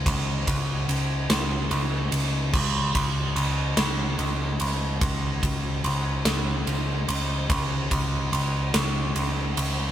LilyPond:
<<
  \new Staff \with { instrumentName = "Picked electric bass" } { \clef bass \time 6/8 \key cis \phrygian \tempo 4. = 48 cis,8 cis,8 cis,8 cis,8 cis,8 cis,8 | cis,8 cis,8 cis,8 cis,8 cis,8 cis,8 | cis,8 cis,8 cis,8 cis,8 cis,8 cis,8 | cis,8 cis,8 cis,8 cis,8 cis,8 cis,8 | }
  \new DrumStaff \with { instrumentName = "Drums" } \drummode { \time 6/8 <bd cymr>8 <bd cymr>8 cymr8 <cymr sn>8 cymr8 cymr8 | <cymc bd>8 <bd cymr>8 cymr8 <cymr sn>8 cymr8 cymr8 | <bd cymr>8 <bd cymr>8 cymr8 <cymr sn>8 cymr8 cymr8 | <bd cymr>8 <bd cymr>8 cymr8 <cymr sn>8 cymr8 cymr8 | }
>>